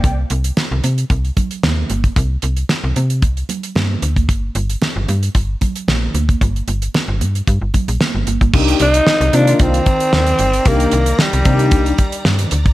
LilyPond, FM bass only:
\new Staff \with { instrumentName = "FM bass" } { \clef bass \time 4/4 \key c \minor \tempo 4 = 113 c,8 c,8 r16 c,16 c8 c,8 r8 ees,8 g,,8 | c,8 c,8 r16 c,16 c8 c,8 r8 g,8 d,8 | g,,8 g,,8 r16 g,,16 g,8 g,,8 r8 bes,,8 d,8 | g,,8 g,,8 r16 g,,16 g,8 g,16 g,,16 r16 bes,,16 r16 g,,16 g,,16 g,,16 |
c,8 c,8 r16 c,16 c8 c,8 r8 ees,8 g,,8 | c,8 c,8 r16 c,16 c8 c,8 r8 g,8 d,8 | }